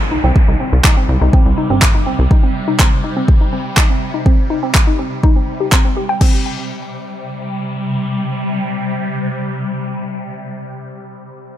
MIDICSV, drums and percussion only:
0, 0, Header, 1, 2, 480
1, 0, Start_track
1, 0, Key_signature, -3, "minor"
1, 0, Tempo, 487805
1, 350, Time_signature, 4, 2, 24, 8
1, 11390, End_track
2, 0, Start_track
2, 0, Title_t, "Drums"
2, 351, Note_on_c, 9, 36, 115
2, 449, Note_off_c, 9, 36, 0
2, 831, Note_on_c, 9, 36, 119
2, 831, Note_on_c, 9, 39, 124
2, 929, Note_off_c, 9, 36, 0
2, 929, Note_off_c, 9, 39, 0
2, 1311, Note_on_c, 9, 36, 118
2, 1409, Note_off_c, 9, 36, 0
2, 1791, Note_on_c, 9, 36, 120
2, 1791, Note_on_c, 9, 39, 127
2, 1889, Note_off_c, 9, 36, 0
2, 1889, Note_off_c, 9, 39, 0
2, 2271, Note_on_c, 9, 36, 118
2, 2369, Note_off_c, 9, 36, 0
2, 2751, Note_on_c, 9, 36, 118
2, 2751, Note_on_c, 9, 39, 116
2, 2849, Note_off_c, 9, 36, 0
2, 2850, Note_off_c, 9, 39, 0
2, 3231, Note_on_c, 9, 36, 118
2, 3329, Note_off_c, 9, 36, 0
2, 3711, Note_on_c, 9, 36, 120
2, 3711, Note_on_c, 9, 39, 126
2, 3809, Note_off_c, 9, 36, 0
2, 3809, Note_off_c, 9, 39, 0
2, 4190, Note_on_c, 9, 36, 113
2, 4289, Note_off_c, 9, 36, 0
2, 4671, Note_on_c, 9, 36, 118
2, 4671, Note_on_c, 9, 39, 110
2, 4769, Note_off_c, 9, 36, 0
2, 4769, Note_off_c, 9, 39, 0
2, 5151, Note_on_c, 9, 36, 116
2, 5249, Note_off_c, 9, 36, 0
2, 5631, Note_on_c, 9, 36, 116
2, 5631, Note_on_c, 9, 39, 115
2, 5729, Note_off_c, 9, 36, 0
2, 5729, Note_off_c, 9, 39, 0
2, 6111, Note_on_c, 9, 36, 107
2, 6111, Note_on_c, 9, 49, 85
2, 6209, Note_off_c, 9, 36, 0
2, 6209, Note_off_c, 9, 49, 0
2, 11390, End_track
0, 0, End_of_file